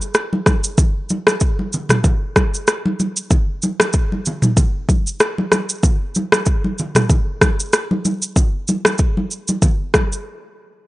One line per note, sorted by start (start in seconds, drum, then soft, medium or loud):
0.01 shaker medium
0.14 cross-stick medium
0.14 shaker medium
0.33 high conga medium
0.46 kick medium
0.46 cross-stick medium
0.46 high conga medium
0.46 shaker medium
0.64 shaker medium
0.78 kick loud
0.78 low conga medium
0.78 shaker medium
1.10 high conga medium
1.10 shaker medium
1.27 cross-stick loud
1.27 high conga medium
1.27 shaker medium
1.40 kick medium
1.40 shaker medium
1.59 high conga medium
1.73 low conga medium
1.73 shaker medium
1.89 cross-stick medium
1.89 mid tom medium
1.89 high conga medium
1.89 shaker medium
2.04 kick loud
2.04 low conga medium
2.04 shaker medium
2.36 kick medium
2.36 cross-stick medium
2.36 high conga medium
2.36 shaker soft
2.54 shaker medium
2.68 cross-stick medium
2.68 shaker medium
2.86 high conga medium
3.00 high conga medium
3.00 shaker medium
3.17 shaker medium
3.31 kick loud
3.31 low conga medium
3.31 shaker medium
3.62 high conga medium
3.62 shaker medium
3.80 cross-stick loud
3.80 high conga medium
3.80 shaker medium
3.93 kick medium
3.93 shaker medium
4.12 high conga medium
4.26 low conga medium
4.26 shaker medium
4.42 mid tom medium
4.42 high conga medium
4.42 shaker medium
4.57 kick loud
4.57 low conga medium
4.57 shaker medium
4.89 kick medium
4.89 high conga medium
4.89 shaker soft
5.07 shaker medium
5.20 cross-stick loud
5.20 shaker medium
5.38 high conga medium
5.52 cross-stick medium
5.52 high conga medium
5.52 shaker medium
5.69 shaker medium
5.83 kick loud
5.83 low conga medium
5.83 shaker medium
6.15 high conga medium
6.15 shaker medium
6.32 cross-stick loud
6.32 high conga medium
6.32 shaker medium
6.46 kick medium
6.46 shaker medium
6.64 high conga medium
6.78 low conga medium
6.78 shaker medium
6.95 cross-stick medium
6.95 mid tom loud
6.95 high conga medium
6.95 shaker medium
7.10 kick loud
7.10 low conga medium
7.10 shaker medium
7.41 kick medium
7.41 cross-stick medium
7.41 high conga medium
7.41 shaker soft
7.60 shaker medium
7.73 cross-stick medium
7.73 shaker medium
7.91 high conga medium
8.05 high conga medium
8.05 shaker medium
8.22 shaker medium
8.36 kick loud
8.36 low conga medium
8.36 shaker medium
8.68 high conga medium
8.68 shaker medium
8.85 cross-stick loud
8.85 high conga medium
8.85 shaker medium
8.98 kick medium
8.98 shaker medium
9.17 high conga medium
9.31 shaker medium
9.48 high conga medium
9.48 shaker medium
9.62 kick loud
9.62 low conga medium
9.62 shaker medium
9.94 kick medium
9.94 cross-stick loud
9.94 high conga medium
9.94 shaker soft
10.12 shaker medium